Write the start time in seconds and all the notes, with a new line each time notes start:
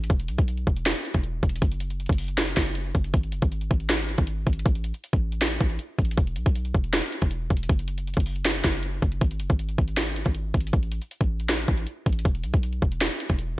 0.04 closed hi-hat
0.10 E1, kick, closed hi-hat
0.20 closed hi-hat
0.28 B1, closed hi-hat
0.38 B1, kick, closed hi-hat
0.48 closed hi-hat
0.57 closed hi-hat
0.67 E1, kick
0.77 closed hi-hat
0.86 snare, closed hi-hat
0.96 closed hi-hat
1.05 closed hi-hat
1.14 E1, kick, closed hi-hat
1.23 closed hi-hat
1.43 E1, kick, closed hi-hat
1.49 closed hi-hat
1.56 closed hi-hat
1.62 F#1, kick, closed hi-hat
1.72 closed hi-hat
1.80 closed hi-hat
1.90 closed hi-hat
2.00 closed hi-hat
2.06 F#1, kick, closed hi-hat
2.13 closed hi-hat
2.18 open hi-hat
2.28 closed hi-hat
2.38 snare, closed hi-hat
2.48 closed hi-hat
2.57 F#1, kick, snare, closed hi-hat
2.66 closed hi-hat
2.75 closed hi-hat
2.95 F#1, kick, closed hi-hat
3.04 closed hi-hat
3.14 G#1, kick, closed hi-hat
3.23 closed hi-hat
3.32 F#1, closed hi-hat
3.42 G#1, kick, closed hi-hat
3.52 closed hi-hat
3.61 closed hi-hat
3.71 G#1, kick
3.80 closed hi-hat
3.89 snare, closed hi-hat
3.99 closed hi-hat
4.09 closed hi-hat
4.18 G#1, kick, closed hi-hat
4.27 closed hi-hat
4.47 G#1, kick, closed hi-hat
4.53 closed hi-hat
4.59 closed hi-hat
4.66 A1, kick, closed hi-hat
4.75 closed hi-hat
4.84 closed hi-hat
4.94 closed hi-hat
5.04 closed hi-hat
5.13 A1, kick, closed hi-hat
5.32 closed hi-hat
5.42 snare, closed hi-hat
5.51 closed hi-hat
5.61 A1, kick, closed hi-hat
5.70 closed hi-hat
5.79 closed hi-hat
5.99 A1, kick, closed hi-hat
6.05 closed hi-hat
6.11 closed hi-hat
6.18 E1, kick, closed hi-hat
6.27 closed hi-hat
6.36 B1, closed hi-hat
6.46 B1, kick, closed hi-hat
6.55 closed hi-hat
6.65 closed hi-hat
6.75 E1, kick
6.84 closed hi-hat
6.93 snare, closed hi-hat
7.03 closed hi-hat
7.12 closed hi-hat
7.22 E1, kick, closed hi-hat
7.31 closed hi-hat
7.50 E1, kick, closed hi-hat
7.57 closed hi-hat
7.63 closed hi-hat
7.69 F#1, kick, closed hi-hat
7.79 closed hi-hat
7.88 closed hi-hat
7.98 closed hi-hat
8.07 closed hi-hat
8.14 F#1, kick, closed hi-hat
8.20 closed hi-hat
8.26 open hi-hat
8.36 closed hi-hat
8.45 snare, closed hi-hat
8.55 closed hi-hat
8.64 F#1, kick, snare, closed hi-hat
8.74 closed hi-hat
8.83 closed hi-hat
9.02 F#1, kick, closed hi-hat
9.12 closed hi-hat
9.21 G#1, kick, closed hi-hat
9.31 closed hi-hat
9.40 F#1, closed hi-hat
9.50 G#1, kick, closed hi-hat
9.59 closed hi-hat
9.69 closed hi-hat
9.78 G#1, kick
9.88 closed hi-hat
9.97 snare, closed hi-hat
10.07 closed hi-hat
10.16 closed hi-hat
10.25 G#1, kick, closed hi-hat
10.35 closed hi-hat
10.54 G#1, kick, closed hi-hat
10.61 closed hi-hat
10.67 closed hi-hat
10.73 A1, kick, closed hi-hat
10.83 closed hi-hat
10.92 closed hi-hat
11.02 closed hi-hat
11.11 closed hi-hat
11.21 A1, kick, closed hi-hat
11.40 closed hi-hat
11.49 snare, closed hi-hat
11.59 closed hi-hat
11.68 A1, kick, closed hi-hat
11.77 closed hi-hat
11.87 closed hi-hat
12.06 A1, kick, closed hi-hat
12.13 closed hi-hat
12.19 closed hi-hat
12.25 E1, kick, closed hi-hat
12.35 closed hi-hat
12.44 B1, closed hi-hat
12.53 B1, kick, closed hi-hat
12.63 closed hi-hat
12.73 closed hi-hat
12.82 E1, kick
12.92 closed hi-hat
13.01 snare, closed hi-hat
13.11 closed hi-hat
13.20 closed hi-hat
13.29 E1, kick, closed hi-hat
13.39 closed hi-hat